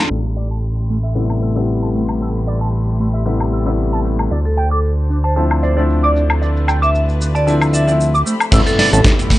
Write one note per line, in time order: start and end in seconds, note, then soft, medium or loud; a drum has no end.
0.10 4.29 A1 medium
0.10 4.28 A3 medium
0.10 4.28 G4 medium
0.10 0.17 A4 medium
0.10 4.28 B5 medium
0.10 4.28 C6 medium
0.25 shaker soft
0.36 0.47 D5 medium
0.36 shaker medium
0.51 0.57 A5 medium
0.51 shaker soft
0.63 shaker soft
0.77 shaker soft
0.89 0.96 A3 medium
0.89 shaker medium
1.03 1.12 E5 medium
1.15 1.52 C3 medium
1.15 1.52 G3 medium
1.15 1.53 A3 medium
1.15 1.53 B3 medium
1.15 1.53 E4 medium
1.15 1.23 E5 medium
1.15 shaker soft
1.30 high woodblock medium
1.30 shaker soft
1.42 1.52 A4 medium
1.42 shaker medium
1.55 3.23 C3 medium
1.55 3.23 G3 medium
1.55 3.23 A3 medium
1.55 3.23 B3 medium
1.55 3.24 E4 loud
1.55 1.60 A4 medium
1.55 shaker soft
1.68 shaker soft
1.82 1.88 A5 medium
1.95 2.02 A3 medium
1.95 shaker medium
2.09 high woodblock medium
2.09 shaker soft
2.21 2.28 A4 medium
2.21 shaker soft
2.35 shaker soft
2.47 2.58 D5 medium
2.47 shaker medium
2.61 2.67 A5 medium
2.61 shaker soft
2.74 shaker soft
2.88 shaker soft
3.00 3.07 A3 medium
3.00 shaker medium
3.14 3.23 E5 medium
3.14 shaker soft
3.25 3.63 C3 medium
3.25 3.63 G3 medium
3.25 3.63 A3 medium
3.25 3.63 B3 medium
3.25 3.63 E4 medium
3.25 3.33 E5 medium
3.25 shaker soft
3.40 high woodblock medium
3.40 shaker soft
3.53 3.63 A4 medium
3.53 shaker medium
3.65 4.29 C3 medium
3.65 4.30 G3 medium
3.65 4.30 A3 medium
3.65 4.30 B3 medium
3.65 4.30 E4 loud
3.65 3.70 A4 medium
3.65 shaker soft
3.79 shaker soft
3.93 3.99 A5 medium
3.93 shaker soft
4.05 4.12 A3 medium
4.05 shaker medium
4.19 high woodblock medium
4.19 shaker soft
4.31 8.24 D2 medium
4.31 8.22 D4 medium
4.31 6.39 C5 medium
4.31 4.38 D5 medium
4.31 shaker soft
4.45 4.58 A4 medium
4.45 shaker soft
4.57 4.68 G5 medium
4.57 shaker medium
4.71 4.85 A4 medium
4.71 4.78 D6 medium
4.71 shaker soft
4.84 shaker soft
4.99 shaker soft
5.10 5.17 D4 medium
5.10 shaker medium
5.24 5.34 C5 medium
5.24 5.33 A5 medium
5.24 shaker soft
5.36 5.73 D3 medium
5.36 5.74 F3 medium
5.36 5.74 A3 medium
5.36 5.74 C4 medium
5.36 5.74 E4 medium
5.36 5.44 A5 medium
5.36 shaker soft
5.51 high woodblock medium
5.51 shaker soft
5.63 5.78 C5 medium
5.63 5.73 D5 medium
5.63 shaker medium
5.76 7.44 D3 medium
5.76 7.44 F3 medium
5.76 7.44 A3 medium
5.76 7.44 C4 medium
5.76 7.45 E4 loud
5.76 5.81 D5 medium
5.76 shaker soft
5.90 shaker soft
6.03 6.16 D5 medium
6.03 6.09 D6 medium
6.03 shaker soft
6.15 6.22 D4 medium
6.15 shaker medium
6.30 high woodblock medium
6.30 shaker soft
6.42 8.24 B4 medium
6.42 6.49 D5 medium
6.42 shaker soft
6.56 shaker soft
6.68 6.79 G5 medium
6.68 high woodblock medium
6.68 shaker medium
6.82 6.95 E5 medium
6.82 6.88 D6 medium
6.82 shaker soft
6.95 shaker soft
7.09 shaker soft
7.21 7.28 D4 medium
7.21 shaker medium
7.35 7.48 D5 medium
7.35 7.44 A5 medium
7.35 shaker soft
7.47 7.84 D3 medium
7.47 7.84 F3 medium
7.47 7.84 A3 medium
7.47 7.84 C4 medium
7.47 7.85 E4 loud
7.47 7.54 A5 medium
7.47 shaker soft
7.61 high woodblock medium
7.61 shaker soft
7.73 7.84 D5 medium
7.73 7.83 E5 medium
7.73 shaker medium
7.87 8.08 D3 medium
7.87 8.08 F3 medium
7.87 8.08 A3 medium
7.87 8.08 C4 medium
7.87 8.08 E4 medium
7.87 7.91 D5 medium
7.87 7.96 E5 medium
7.87 shaker soft
8.00 shaker soft
8.14 8.20 D6 medium
8.14 shaker soft
8.26 8.33 A3 medium
8.26 8.52 A3 medium
8.26 8.51 G4 medium
8.26 8.52 C5 medium
8.26 8.51 B5 medium
8.26 shaker medium
8.40 high woodblock medium
8.40 shaker soft
8.51 8.62 A1 loud
8.51 9.31 C3 loud
8.51 9.31 G3 medium
8.51 9.31 A3 medium
8.51 9.39 A3 medium
8.51 9.32 B3 medium
8.51 9.32 E4 loud
8.51 9.39 G4 medium
8.51 8.59 A4 medium
8.51 9.39 B5 medium
8.51 kick loud
8.51 closed hi-hat medium
8.51 crash loud
8.51 shaker medium
8.67 8.79 A4 medium
8.67 closed hi-hat soft
8.67 shaker soft
8.79 8.89 D5 loud
8.79 snare medium
8.79 open hi-hat loud
8.93 9.01 A1 medium
8.93 9.05 A4 medium
8.93 8.99 A5 medium
8.93 closed hi-hat soft
8.93 shaker medium
9.04 kick loud
9.04 snare loud
9.04 closed hi-hat medium
9.04 shaker medium
9.19 closed hi-hat soft
9.19 shaker soft
9.30 9.38 A3 medium
9.30 kick medium
9.30 open hi-hat medium